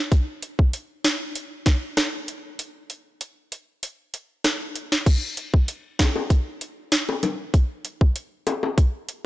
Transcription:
0.12 kick medium
0.12 closed hi-hat medium
0.42 closed hi-hat medium
0.59 kick medium
0.73 closed hi-hat medium
1.04 snare loud
1.04 closed hi-hat medium
1.35 closed hi-hat medium
1.66 kick loud
1.66 snare medium
1.66 closed hi-hat medium
1.97 cross-stick medium
1.97 snare loud
1.97 closed hi-hat medium
2.28 closed hi-hat soft
2.59 closed hi-hat medium
2.90 closed hi-hat medium
3.21 closed hi-hat medium
3.52 closed hi-hat soft
3.83 closed hi-hat medium
4.14 closed hi-hat medium
4.44 cross-stick medium
4.44 snare loud
4.44 closed hi-hat medium
4.76 closed hi-hat medium
4.92 snare medium
5.06 kick loud
5.06 closed hi-hat medium
5.06 crash medium
5.37 closed hi-hat medium
5.54 kick medium
5.68 closed hi-hat medium
5.99 kick loud
5.99 snare loud
5.99 closed hi-hat medium
5.99 high bongo medium
6.16 high bongo medium
6.30 kick loud
6.30 closed hi-hat medium
6.61 closed hi-hat medium
6.92 snare loud
6.92 closed hi-hat medium
7.09 high bongo medium
7.23 closed hi-hat medium
7.23 low bongo medium
7.54 kick loud
7.54 closed hi-hat medium
7.85 closed hi-hat medium
8.01 kick medium
8.16 closed hi-hat medium
8.47 closed hi-hat medium
8.47 high bongo medium
8.63 high bongo medium
8.78 kick loud
8.78 closed hi-hat medium
9.09 closed hi-hat medium

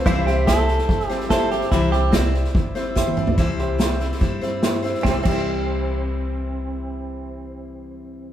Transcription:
0.06 0.78 C2 medium
0.06 0.27 C3 medium
0.06 0.27 E3 medium
0.06 0.27 G3 medium
0.06 0.27 C4 medium
0.06 0.26 E4 medium
0.06 0.27 E4 loud
0.06 3.35 C5 medium
0.06 0.26 C5 medium
0.06 0.27 F5 medium
0.06 kick loud
0.06 snare soft
0.27 0.47 G3 soft
0.27 0.48 C4 medium
0.27 0.48 E4 soft
0.27 0.47 G4 medium
0.27 0.48 C5 medium
0.27 3.36 E5 medium
0.27 snare soft
0.45 1.11 G3 medium
0.45 0.79 E4 medium
0.45 0.79 G4 medium
0.45 1.08 A4 medium
0.45 0.80 C5 medium
0.45 kick medium
0.45 snare loud
0.45 hi-hat pedal medium
0.49 1.11 C4 medium
0.49 1.10 E4 medium
0.49 1.09 C5 medium
0.68 snare soft
0.79 snare soft
0.89 1.61 G1 medium
0.89 kick loud
0.89 snare soft
1.00 snare soft
1.08 1.30 G3 soft
1.08 1.30 C4 medium
1.08 1.31 E4 medium
1.08 1.28 G4 medium
1.08 1.30 C5 medium
1.08 snare soft
1.20 snare soft
1.29 1.52 G3 medium
1.29 1.52 C4 medium
1.29 1.62 E4 medium
1.29 1.51 E4 medium
1.29 1.62 G4 medium
1.29 1.51 A4 medium
1.29 1.63 C5 medium
1.29 1.50 C5 medium
1.29 kick medium
1.29 snare medium
1.29 hi-hat pedal medium
1.51 1.72 G3 medium
1.51 1.72 C4 soft
1.51 1.73 E4 medium
1.51 1.71 G4 medium
1.51 1.72 C5 medium
1.51 snare soft
1.61 snare soft
1.71 2.44 C2 medium
1.71 1.93 C3 medium
1.71 1.93 E3 medium
1.71 1.93 G3 medium
1.71 1.93 C4 loud
1.71 1.92 E4 medium
1.71 1.92 E4 loud
1.71 1.92 C5 loud
1.71 kick loud
1.71 snare soft
1.92 2.11 G3 soft
1.92 2.12 C4 medium
1.92 2.13 E4 medium
1.92 2.13 G4 medium
1.92 2.13 C5 medium
1.92 snare soft
2.10 2.75 G3 medium
2.10 2.33 C4 medium
2.10 2.75 C4 medium
2.10 2.44 E4 medium
2.10 2.74 E4 medium
2.10 2.45 G4 medium
2.10 2.74 C5 medium
2.10 2.46 D5 medium
2.10 kick medium
2.10 snare loud
2.10 hi-hat pedal medium
2.34 snare soft
2.44 snare soft
2.55 3.27 G1 medium
2.55 kick loud
2.55 snare soft
2.75 2.94 G3 soft
2.75 2.95 C4 medium
2.75 2.96 E4 medium
2.75 2.96 C5 medium
2.75 snare soft
2.95 3.17 G3 medium
2.95 3.17 C4 medium
2.95 3.28 E4 medium
2.95 3.16 E4 medium
2.95 3.29 G4 medium
2.95 3.16 C5 medium
2.95 3.29 C5 medium
2.95 kick medium
2.95 snare medium
2.95 hi-hat pedal medium
3.07 high tom medium
3.17 3.37 G3 soft
3.17 3.38 C4 medium
3.17 3.38 E4 soft
3.17 3.38 C5 medium
3.17 mid tom medium
3.27 floor tom medium
3.38 4.10 C2 medium
3.38 3.80 C3 medium
3.38 3.80 E3 medium
3.38 3.77 G3 medium
3.38 3.78 C4 medium
3.38 3.79 E4 medium
3.38 3.79 C5 loud
3.38 kick loud
3.38 snare soft
3.58 3.75 E4 medium
3.58 3.75 G4 medium
3.58 3.76 C5 medium
3.58 snare soft
3.78 4.00 G3 medium
3.78 4.00 C4 medium
3.78 4.12 E4 medium
3.78 4.00 E4 medium
3.78 4.12 G4 medium
3.78 4.12 C5 medium
3.78 3.99 C5 medium
3.78 snare loud
3.78 hi-hat pedal medium
4.00 4.18 G3 medium
4.00 4.19 C4 medium
4.00 4.20 E4 medium
4.00 4.20 C5 medium
4.00 snare soft
4.12 snare soft
4.20 4.93 G2 medium
4.20 4.41 G3 medium
4.20 4.42 C4 medium
4.20 4.41 E4 medium
4.20 4.40 C5 medium
4.20 kick medium
4.20 snare soft
4.41 4.83 G3 soft
4.41 4.83 C4 soft
4.41 4.83 E4 soft
4.41 4.81 C5 medium
4.41 snare soft
4.61 4.95 E4 medium
4.61 4.95 G4 medium
4.61 4.95 C5 medium
4.61 snare loud
4.61 hi-hat pedal medium
4.83 5.05 G3 soft
4.83 5.05 C4 soft
4.83 5.05 E4 medium
4.83 5.04 C5 medium
4.83 snare soft
4.95 snare soft
5.01 5.16 C2 medium
5.01 5.22 C3 medium
5.01 5.25 E3 medium
5.01 5.16 C4 medium
5.01 5.14 E4 medium
5.01 kick loud
5.05 5.27 G3 medium
5.05 5.29 C4 loud
5.05 5.16 G4 medium
5.05 5.18 C5 medium
5.05 snare medium
5.10 5.31 E4 medium
5.10 5.33 C5 medium
5.21 8.33 C3 medium
5.21 8.27 C4 loud
5.21 8.24 E4 medium
5.25 8.29 C2 medium
5.25 8.33 E3 medium
5.25 8.33 G3 medium
5.25 8.28 G4 medium
5.25 kick loud
5.25 crash medium
5.29 8.33 C4 medium
5.29 8.33 E4 medium
5.29 8.32 C5 medium
5.29 8.33 C5 medium

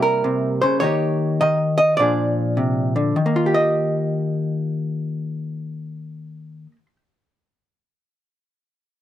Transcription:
0.00 0.23 C3 medium
0.00 0.80 G3 soft
0.00 0.82 A#3 soft
0.00 0.81 E4 medium
0.00 0.61 A#4 medium
0.24 0.63 C3 medium
0.62 0.82 C#3 medium
0.62 0.80 C5 medium
0.80 1.40 D#3 medium
0.80 1.96 A#3 soft
0.80 1.97 D#4 soft
0.80 1.97 G4 soft
0.80 1.39 C#5 loud
1.41 1.96 D#3 medium
1.41 1.76 D#5 medium
1.78 1.96 D#5 loud
1.97 3.13 A#2 medium
1.97 3.25 F3 soft
1.97 3.13 D4 soft
1.97 3.14 D5 medium
2.01 3.14 G#4 soft
2.57 2.95 C3 medium
2.96 3.15 D3 medium
3.16 6.66 D#3 medium
3.26 6.76 A#3 medium
3.36 6.86 F4 medium
3.46 6.96 G4 medium
3.54 6.71 D#5 medium

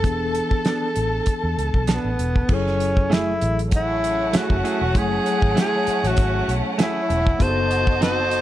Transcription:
0.00 2.45 E3 medium
0.00 1.88 A4 medium
0.00 2.46 A4 medium
0.00 2.46 A5 medium
0.00 kick loud
0.04 0.40 E1 loud
0.04 2.46 B3 medium
0.04 2.46 D4 medium
0.04 0.12 G#4 medium
0.04 closed hi-hat medium
0.13 2.50 A4 medium
0.35 closed hi-hat medium
0.51 kick medium
0.65 0.88 B3 medium
0.65 0.88 D4 medium
0.65 0.88 A4 medium
0.65 snare loud
0.65 closed hi-hat medium
0.96 1.20 A1 medium
0.96 closed hi-hat medium
1.26 kick medium
1.26 closed hi-hat medium
1.44 1.54 E2 medium
1.57 1.70 C#2 medium
1.57 closed hi-hat medium
1.74 1.98 B1 medium
1.74 kick medium
1.87 2.10 B3 medium
1.87 2.10 D4 medium
1.87 2.10 A4 medium
1.87 snare loud
1.87 closed hi-hat medium
1.92 2.55 B3 medium
2.04 2.15 A1 medium
2.19 2.42 E1 medium
2.19 closed hi-hat medium
2.36 kick medium
2.48 3.37 F#1 medium
2.48 4.90 F#3 medium
2.48 4.91 E4 medium
2.48 4.91 G#4 medium
2.48 4.92 A4 medium
2.48 kick loud
2.48 crash medium
2.54 3.15 C#4 medium
2.67 snare soft
2.80 closed hi-hat medium
2.97 kick medium
3.10 3.32 A3 medium
3.10 3.33 E4 medium
3.10 3.59 E4 medium
3.10 3.33 G#4 medium
3.10 snare loud
3.10 closed hi-hat medium
3.42 4.30 A1 medium
3.42 closed hi-hat medium
3.59 closed hi-hat medium
3.71 7.35 A3 medium
3.71 7.35 C#4 medium
3.71 7.36 F#5 medium
3.71 kick medium
3.71 closed hi-hat medium
3.76 4.39 E4 medium
4.04 closed hi-hat medium
4.33 4.55 A3 medium
4.33 4.55 E4 medium
4.33 4.56 G#4 medium
4.33 muted fingered electric bass stroke soft
4.33 snare loud
4.33 closed hi-hat loud
4.37 5.00 F#4 medium
4.50 4.61 F#1 medium
4.50 kick medium
4.64 4.82 A3 medium
4.64 4.82 E4 medium
4.64 4.82 G#4 medium
4.64 closed hi-hat medium
4.81 4.95 E1 medium
4.94 5.18 F#1 loud
4.94 7.35 F#3 medium
4.94 7.37 A3 medium
4.94 7.36 E4 medium
4.94 7.36 G#4 medium
4.94 5.58 G#4 medium
4.94 kick loud
4.94 closed hi-hat medium
5.26 closed hi-hat medium
5.42 5.53 G#1 medium
5.42 kick loud
5.55 5.77 A3 medium
5.55 5.78 E4 medium
5.55 5.78 G#4 medium
5.55 snare loud
5.55 closed hi-hat medium
5.61 6.09 G#4 medium
5.87 muted fingered electric bass stroke soft
5.87 closed hi-hat medium
6.04 6.14 A1 medium
6.04 6.54 F#4 loud
6.04 closed hi-hat medium
6.17 6.41 G#1 loud
6.17 kick loud
6.17 closed hi-hat loud
6.48 6.61 B1 medium
6.48 closed hi-hat medium
6.78 7.00 A3 medium
6.78 7.01 E4 medium
6.78 7.44 E4 medium
6.78 7.01 G#4 medium
6.78 snare loud
6.78 closed hi-hat loud
7.10 7.33 E1 medium
7.10 closed hi-hat medium
7.27 kick medium
7.39 8.41 F#1 loud
7.39 8.41 B3 medium
7.39 8.41 D#4 medium
7.39 8.41 F#4 medium
7.39 7.48 G#4 medium
7.39 8.02 C5 loud
7.39 8.41 D#5 medium
7.39 8.41 A5 medium
7.39 kick loud
7.39 closed hi-hat medium
7.49 8.41 A4 medium
7.71 closed hi-hat medium
7.87 kick loud
8.01 8.23 C4 medium
8.01 8.23 D#4 medium
8.01 8.23 A4 medium
8.01 8.41 C5 loud
8.01 snare loud
8.01 closed hi-hat medium
8.31 closed hi-hat medium

